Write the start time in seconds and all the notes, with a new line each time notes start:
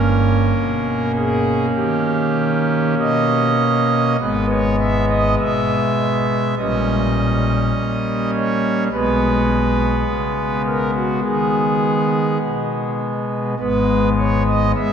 Already playing: G1 G2 A#3 C#4 A#4
0.57 B2
1.16 G#4
1.75 D#3 G4
2.99 B2 D#5
4.20 G#1 G#2 G#3 B3 B4
4.50 C#5
4.80 E5
5.10 D#5
5.39 B2 E5
6.58 A#1 A#2 G3 C#4 D#5
7.77 A#3
8.35 C#5
8.92 B1 B2 G#3 B3 B4
10.08 C#3
10.66 A#4
10.95 F#4
11.24 D#3 G#4
12.42 B2
13.59 G#1 G#2 G#3 B3 B4
14.18 C#5
14.47 D#5
14.76 G#3 E5